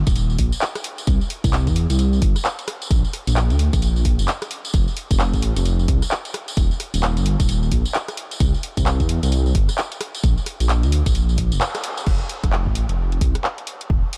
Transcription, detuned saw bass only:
0.07 D#1
0.39 A#1
1.07 C2
1.44 C2
1.67 E2
1.90 C2
2.22 G1
2.91 A#1
3.27 A#1
3.50 D2
3.73 A#1
4.19 F1
4.74 F1
5.11 F1
5.34 A1
5.56 F1
5.88 C2
6.57 D#1
6.94 D#1
7.17 G1
7.40 D#1
7.72 A#1
8.40 C2
8.77 C2
9.00 E2
9.23 C2
9.55 G1
10.24 A#1
10.60 A#1
10.83 D2
11.06 A#1
11.52 F1
12.07 F1
12.44 F1
12.66 A1
12.89 F1
13.21 C2
13.90 D#1

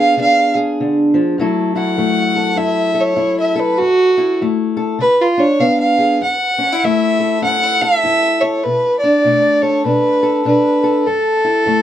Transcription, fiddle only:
Already playing: F5
0.21 F5
1.77 F#5
2.58 E5
3.00 C#5
3.40 E5
3.59 B4
3.79 F#4
5.01 B4
5.21 F4
5.39 C#5
5.61 F5
5.80 F5
6.24 F#5
6.84 E5
7.44 F#5
7.82 E5
8.41 C#5
8.63 B4
9.00 D5
9.62 C#5
9.86 B4
10.47 B4
11.07 A4

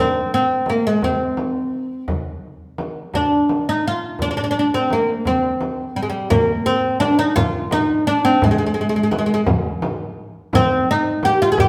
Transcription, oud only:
0.00 C4
0.34 C4
0.70 A#3
0.87 G#3
1.04 C4
3.15 D4
3.69 D#4
3.88 F4
4.22 D4
4.31 D4
4.37 D4
4.44 D4
4.51 D4
4.59 D4
4.74 C4
4.93 A#3
5.27 C4
5.96 G3
6.03 G#3
6.10 G3
6.30 A#3
6.66 C4
7.00 D4
7.19 D#4
7.36 F4
7.72 D#4
8.07 D4
8.25 C4
8.44 G#3
8.51 G#3
8.58 G#3
8.66 G#3
8.74 G#3
8.81 G#3
8.89 G#3
8.96 G#3
9.03 G#3
9.11 G#3
9.18 G#3
9.26 G#3
9.34 G#3
10.55 C4
10.91 D#4
11.25 G4
11.42 F4
11.52 G#4
11.60 G4

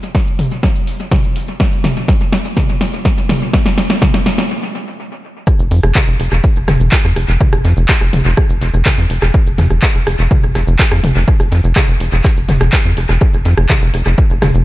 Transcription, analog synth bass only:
5.59 F1
5.71 F2
5.83 F1
6.08 F1
6.20 F1
6.32 F1
6.56 F1
6.68 F1
6.80 F1
7.04 F2
7.16 F1
7.29 F1
7.53 F1
7.65 F2
7.77 F1
8.01 F1
8.13 F1
8.25 F1
8.49 F1
8.62 F1
8.74 F1
8.98 F2
9.10 F1
9.22 F1
9.46 F1
9.58 F2
9.70 F1
9.95 F1
10.07 F1
10.19 F1
10.43 F1
10.55 F1
10.67 F1
10.92 F2
11.04 F1
11.16 F1
11.40 F1
11.52 F2
11.64 F1
11.88 F1
12.00 F1
12.12 F1
12.37 F1
12.49 F1
12.61 F1
12.85 F2
12.97 F1
13.09 F1
13.33 F1
13.45 F2
13.58 F1
13.82 F1
13.94 F1
14.06 F1
14.30 F1
14.42 F1
14.54 F1

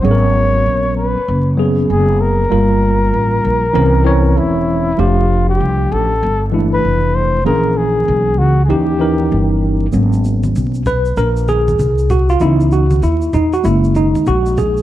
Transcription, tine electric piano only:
0.02 F#3 B3 C#4 G#4
0.11 A#4
1.57 F#3 B3 C#4 G#4
2.50 G3 A#3 F4 A#4
3.73 E3 C4 C#4 A#4
4.04 E3 C4 C#4 C#5
4.97 F3 A3 D4 G4
6.52 E3 G#3 D4 E4
6.59 A3
7.45 E3 A#3 C#4 G#4
8.68 E3 C#4 D#4 G4
8.99 E3 C#4 D#4 A#4
9.92 F#3 A#3 B3 C#4
10.87 B4
11.18 A#4
11.49 G#4
12.10 F#4
12.30 F4
12.40 E3 B3 D#4 E4
12.73 F#4
13.03 E4
13.34 D#4
13.53 F#4
13.63 G#3 A#3 E4
13.96 D#4
14.27 F#4
14.58 G#4

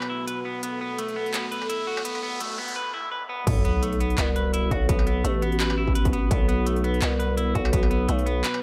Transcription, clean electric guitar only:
0.10 E4
0.27 B4
0.45 B3
0.63 B3
0.81 B3
0.98 A3
1.16 B3
1.34 B3
1.52 B4
1.69 E4
1.87 F#4
2.05 B3
2.23 B3
2.41 A3
2.58 B3
2.76 B4
2.94 E4
3.12 B4
3.29 B3
3.47 B3
3.65 B3
3.83 A3
4.00 B3
4.18 B3
4.36 B4
4.54 E4
4.71 F#4
4.89 B3
5.07 B3
5.25 A3
5.42 B3
5.60 B4
5.78 E4
5.95 B4
6.13 B3
6.31 B3
6.48 B3
6.66 A3
6.84 B3
7.02 B3
7.19 B4
7.37 E4
7.55 F#4
7.73 B3
7.91 B3
8.08 A3
8.26 B3
8.44 B4

